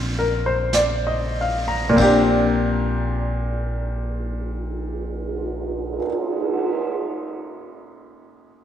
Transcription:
0, 0, Header, 1, 5, 480
1, 0, Start_track
1, 0, Key_signature, -2, "major"
1, 0, Tempo, 1214575
1, 775, Time_signature, 4, 2, 24, 8
1, 775, Tempo, 1263158
1, 3314, End_track
2, 0, Start_track
2, 0, Title_t, "Upright piano"
2, 0, Program_c, 0, 0
2, 0, Control_c, 0, 64, 127
2, 0, Note_on_c, 0, 55, 49
2, 0, Note_on_c, 0, 58, 41
2, 0, Note_on_c, 0, 60, 32
2, 0, Note_on_c, 0, 63, 43
2, 0, Note_on_c, 0, 65, 35
2, 74, Note_on_c, 0, 70, 35
2, 183, Note_on_c, 0, 72, 32
2, 207, Note_off_c, 0, 70, 0
2, 294, Note_on_c, 0, 74, 37
2, 341, Note_off_c, 0, 72, 0
2, 422, Note_on_c, 0, 75, 36
2, 521, Note_off_c, 0, 74, 0
2, 558, Note_on_c, 0, 77, 37
2, 627, Note_off_c, 0, 75, 0
2, 664, Note_on_c, 0, 82, 40
2, 695, Note_off_c, 0, 77, 0
2, 749, Note_on_c, 0, 46, 49
2, 758, Note_off_c, 0, 58, 0
2, 763, Note_on_c, 0, 58, 42
2, 768, Note_off_c, 0, 60, 0
2, 773, Note_off_c, 0, 55, 0
2, 774, Note_on_c, 0, 60, 43
2, 779, Note_off_c, 0, 63, 0
2, 780, Control_c, 0, 64, 0
2, 782, Note_off_c, 0, 65, 0
2, 787, Note_on_c, 0, 62, 44
2, 798, Note_on_c, 0, 67, 49
2, 830, Note_off_c, 0, 82, 0
2, 850, Control_c, 0, 64, 127
2, 2291, Note_off_c, 0, 46, 0
2, 2305, Note_off_c, 0, 58, 0
2, 2315, Note_off_c, 0, 60, 0
2, 2328, Note_off_c, 0, 62, 0
2, 2339, Note_off_c, 0, 67, 0
2, 3314, End_track
3, 0, Start_track
3, 0, Title_t, "Upright bass"
3, 0, Program_c, 1, 32
3, 0, Note_on_c, 1, 34, 62
3, 758, Note_off_c, 1, 34, 0
3, 778, Note_on_c, 1, 34, 61
3, 2303, Note_off_c, 1, 34, 0
3, 3314, End_track
4, 0, Start_track
4, 0, Title_t, "Cymbal swell"
4, 1110, Note_on_c, 9, 59, 30
4, 2601, Note_off_c, 9, 59, 0
4, 3314, End_track
5, 0, Start_track
5, 0, Title_t, "Drums"
5, 288, Note_on_c, 9, 25, 24
5, 288, Note_on_c, 9, 38, 30
5, 288, Note_on_c, 9, 44, 36
5, 328, Note_off_c, 9, 38, 0
5, 328, Note_off_c, 9, 44, 0
5, 779, Note_on_c, 9, 36, 39
5, 780, Note_on_c, 9, 51, 46
5, 817, Note_off_c, 9, 36, 0
5, 818, Note_off_c, 9, 51, 0
5, 1008, Note_off_c, 9, 25, 0
5, 3314, End_track
0, 0, End_of_file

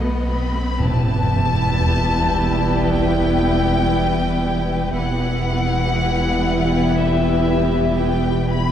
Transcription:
0, 0, Header, 1, 13, 480
1, 0, Start_track
1, 0, Key_signature, 1, "minor"
1, 0, Tempo, 1043478
1, 364, Time_signature, 4, 2, 24, 8
1, 1796, Tempo, 1023891
1, 4053, End_track
2, 0, Start_track
2, 0, Title_t, "Violin section"
2, 0, Program_c, 0, 48
2, 0, Note_on_c, 0, 78, 44
2, 99, Note_off_c, 0, 78, 0
2, 119, Note_on_c, 0, 83, 66
2, 347, Note_off_c, 0, 83, 0
2, 362, Note_on_c, 0, 81, 100
2, 1316, Note_on_c, 0, 79, 89
2, 1317, Note_off_c, 0, 81, 0
2, 2275, Note_on_c, 0, 78, 98
2, 2278, Note_off_c, 0, 79, 0
2, 3215, Note_off_c, 0, 78, 0
2, 3238, Note_on_c, 0, 76, 80
2, 3714, Note_on_c, 0, 79, 75
2, 3717, Note_off_c, 0, 76, 0
2, 3955, Note_off_c, 0, 79, 0
2, 3955, Note_on_c, 0, 83, 81
2, 4053, Note_off_c, 0, 83, 0
2, 4053, End_track
3, 0, Start_track
3, 0, Title_t, "Vibraphone"
3, 0, Program_c, 1, 11
3, 0, Control_c, 1, 64, 127
3, 0, Note_on_c, 1, 71, 25
3, 0, Note_on_c, 1, 83, 38
3, 347, Note_off_c, 1, 71, 0
3, 347, Note_off_c, 1, 83, 0
3, 372, Control_c, 1, 64, 0
3, 458, Control_c, 1, 64, 127
3, 848, Note_on_c, 1, 81, 44
3, 2263, Note_off_c, 1, 81, 0
3, 3002, Note_on_c, 1, 67, 40
3, 3004, Note_on_c, 1, 76, 54
3, 4053, Note_off_c, 1, 67, 0
3, 4053, Note_off_c, 1, 76, 0
3, 4053, End_track
4, 0, Start_track
4, 0, Title_t, "Violin section"
4, 0, Program_c, 2, 48
4, 0, Note_on_c, 2, 75, 43
4, 252, Note_off_c, 2, 75, 0
4, 365, Note_on_c, 2, 67, 65
4, 368, Note_on_c, 2, 71, 65
4, 2261, Note_off_c, 2, 67, 0
4, 2262, Note_off_c, 2, 71, 0
4, 2282, Note_on_c, 2, 71, 59
4, 2284, Note_on_c, 2, 67, 61
4, 4053, Note_off_c, 2, 67, 0
4, 4053, Note_off_c, 2, 71, 0
4, 4053, End_track
5, 0, Start_track
5, 0, Title_t, "French horn section"
5, 0, Program_c, 3, 60
5, 368, Note_on_c, 3, 59, 70
5, 368, Note_on_c, 3, 64, 69
5, 2262, Note_off_c, 3, 59, 0
5, 2262, Note_off_c, 3, 64, 0
5, 2282, Note_on_c, 3, 59, 70
5, 2282, Note_on_c, 3, 64, 69
5, 4053, Note_off_c, 3, 59, 0
5, 4053, Note_off_c, 3, 64, 0
5, 4053, End_track
6, 0, Start_track
6, 0, Title_t, "Viola section"
6, 0, Program_c, 4, 48
6, 0, Note_on_c, 4, 57, 40
6, 111, Note_off_c, 4, 57, 0
6, 119, Note_on_c, 4, 57, 29
6, 156, Note_off_c, 4, 57, 0
6, 244, Note_on_c, 4, 57, 34
6, 281, Note_off_c, 4, 57, 0
6, 364, Note_on_c, 4, 59, 66
6, 366, Note_on_c, 4, 64, 63
6, 2260, Note_off_c, 4, 59, 0
6, 2261, Note_off_c, 4, 64, 0
6, 2274, Note_on_c, 4, 64, 64
6, 2275, Note_on_c, 4, 59, 63
6, 4053, Note_off_c, 4, 59, 0
6, 4053, Note_off_c, 4, 64, 0
6, 4053, End_track
7, 0, Start_track
7, 0, Title_t, "Trombone section"
7, 0, Program_c, 5, 61
7, 364, Note_on_c, 5, 52, 72
7, 365, Note_on_c, 5, 55, 73
7, 2260, Note_off_c, 5, 52, 0
7, 2261, Note_off_c, 5, 55, 0
7, 2276, Note_on_c, 5, 52, 68
7, 2278, Note_on_c, 5, 55, 70
7, 4053, Note_off_c, 5, 52, 0
7, 4053, Note_off_c, 5, 55, 0
7, 4053, End_track
8, 0, Start_track
8, 0, Title_t, "Cello section"
8, 0, Program_c, 6, 48
8, 121, Note_on_c, 6, 47, 32
8, 158, Note_off_c, 6, 47, 0
8, 243, Note_on_c, 6, 47, 32
8, 280, Note_off_c, 6, 47, 0
8, 366, Note_on_c, 6, 40, 61
8, 2261, Note_off_c, 6, 40, 0
8, 2281, Note_on_c, 6, 40, 58
8, 4053, Note_off_c, 6, 40, 0
8, 4053, End_track
9, 0, Start_track
9, 0, Title_t, "Timpani"
9, 0, Program_c, 7, 47
9, 365, Note_on_c, 7, 40, 82
9, 1062, Note_off_c, 7, 40, 0
9, 4053, End_track
10, 0, Start_track
10, 0, Title_t, "Double bass section"
10, 0, Program_c, 8, 48
10, 121, Note_on_c, 8, 35, 29
10, 158, Note_off_c, 8, 35, 0
10, 370, Note_on_c, 8, 28, 61
10, 2263, Note_off_c, 8, 28, 0
10, 2280, Note_on_c, 8, 28, 58
10, 4053, Note_off_c, 8, 28, 0
10, 4053, End_track
11, 0, Start_track
11, 0, Title_t, "Sub bass"
11, 0, Program_c, 10, 38
11, 0, Note_on_c, 10, 35, 60
11, 364, Note_off_c, 10, 35, 0
11, 366, Note_on_c, 10, 28, 83
11, 2261, Note_off_c, 10, 28, 0
11, 2278, Note_on_c, 10, 28, 75
11, 4053, Note_off_c, 10, 28, 0
11, 4053, End_track
12, 0, Start_track
12, 0, Title_t, "Riser"
12, 0, Program_c, 11, 103
12, 0, Note_on_c, 11, 60, 65
12, 364, Note_off_c, 11, 60, 0
12, 4053, End_track
13, 0, Start_track
13, 0, Title_t, "Sub drop"
13, 0, Program_c, 12, 103
13, 366, Note_on_c, 12, 60, 65
13, 2280, Note_off_c, 12, 60, 0
13, 4053, End_track
0, 0, End_of_file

